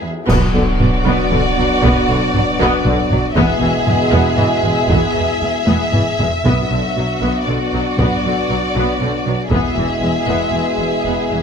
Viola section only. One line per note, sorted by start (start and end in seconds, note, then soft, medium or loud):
0.01 0.09 B3 soft
0.28 0.53 B3 medium
0.54 0.62 D3 soft
0.80 0.88 F#3 soft
1.07 1.30 B3 medium
1.32 1.40 D3 soft
1.59 1.67 F#3 soft
1.84 2.07 B3 medium
2.10 2.18 D3 medium
2.35 2.43 F#3 medium
2.60 2.84 B3 medium
2.87 2.95 D3 medium
3.11 3.19 F#3 medium
3.37 3.60 B3 medium
3.61 3.69 E3 medium
3.86 3.94 G#3 medium
4.12 4.36 B3 medium
4.37 4.45 E3 medium
4.64 4.72 G#3 soft
4.91 5.14 B3 medium
5.16 5.24 E3 soft
5.43 5.51 G#3 soft
5.68 5.92 B3 medium
5.94 6.02 E3 soft
6.21 6.29 G#3 soft
6.46 6.69 B3 medium
6.73 6.81 D3 soft
6.98 7.06 F#3 soft
7.22 7.46 B3 medium
7.48 7.56 D3 soft
7.74 7.82 F#3 soft
7.99 8.23 B3 soft
8.27 8.35 D3 soft
8.51 8.59 F#3 soft
8.76 9.00 B3 medium
9.02 9.10 D3 soft
9.26 9.34 F#3 soft
9.52 9.75 B3 medium
9.78 9.86 E3 soft
10.03 10.11 G#3 soft
10.28 10.52 B3 medium
10.53 10.61 E3 soft
10.79 10.87 G#3 soft
11.05 11.30 B3 soft
11.32 11.40 E3 soft